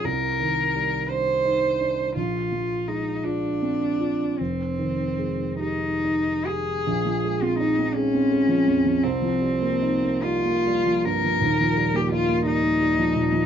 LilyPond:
<<
  \new Staff \with { instrumentName = "Cello" } { \time 6/8 \key f \dorian \tempo 4. = 55 bes'4. c''4. | f'4 ees'8 d'4. | c'4. ees'4 aes'8~ | \key bes \dorian aes'8. f'16 ees'8 des'4. |
c'4. f'4 bes'8~ | bes'8. g'16 f'8 ees'4. | }
  \new Staff \with { instrumentName = "Grand piano" } { \clef bass \time 6/8 \key f \dorian c,8 ees8 g8 d'8 ees'8 d'8 | bes,,8 f8 aes8 f'8 c'8 f'8 | f,,8 ees8 aes8 g'8 ees'8 g'8 | \key bes \dorian bes,,16 f16 aes16 c'16 ees'16 c'16 aes16 c'16 aes16 f16 f,16 f16 |
c,16 f16 g16 bes16 ees'16 bes16 g16 bes16 g16 f16 g,16 f16 | <ees,, ees,>16 f16 g16 bes16 ees'16 bes16 g16 bes16 g16 f16 bes,16 f16 | }
>>